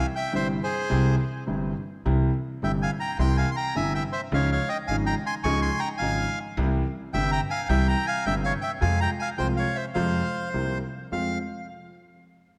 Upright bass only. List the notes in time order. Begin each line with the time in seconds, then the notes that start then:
0.34 G1
0.92 C2
1.48 G1
2.06 C2
2.62 G1
3.19 C2
3.76 G1
4.32 C#2
4.88 G#1
5.44 C#2
6.00 G#1
6.57 C2
7.13 G1
7.69 C2
8.26 G1
8.82 F2
9.39 C2
9.96 F2
10.54 C2
11.12 F2